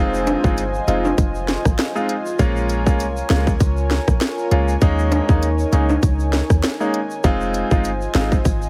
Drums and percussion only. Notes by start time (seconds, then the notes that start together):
0.14 shaker
0.27 closed hi-hat, high timbale, shaker
0.44 kick, shaker
0.58 closed hi-hat, shaker
0.74 shaker
0.88 closed hi-hat, shaker
1.05 high timbale, shaker
1.18 kick, closed hi-hat, shaker
1.35 shaker
1.48 snare, closed hi-hat
1.65 kick, cross-stick, shaker
1.79 snare, closed hi-hat, shaker
1.96 shaker
2.09 closed hi-hat
2.26 shaker
2.39 kick, closed hi-hat, shaker
2.56 shaker
2.69 closed hi-hat, shaker
2.87 kick, shaker
3.00 closed hi-hat, shaker
3.17 shaker
3.30 snare, closed hi-hat, shaker
3.47 kick, shaker
3.60 kick, closed hi-hat, shaker
3.77 shaker
3.91 snare, closed hi-hat
4.08 kick, cross-stick, shaker
4.21 snare, closed hi-hat, shaker
4.38 shaker
4.51 closed hi-hat
4.68 shaker
4.81 kick, closed hi-hat, shaker
4.99 shaker
5.12 closed hi-hat, high timbale, shaker
5.29 kick, shaker
5.42 closed hi-hat, shaker
5.59 shaker
5.72 closed hi-hat, shaker
5.89 high timbale, shaker
6.03 kick, closed hi-hat, shaker
6.20 shaker
6.33 snare, closed hi-hat
6.50 kick, cross-stick, shaker
6.63 snare, closed hi-hat, shaker
6.81 shaker
6.94 closed hi-hat
7.11 shaker
7.24 kick, closed hi-hat, shaker
7.41 shaker
7.54 closed hi-hat, shaker
7.71 kick, shaker
7.84 closed hi-hat, shaker
8.01 shaker
8.15 snare, closed hi-hat, shaker
8.32 kick, shaker
8.45 kick, closed hi-hat, shaker
8.62 shaker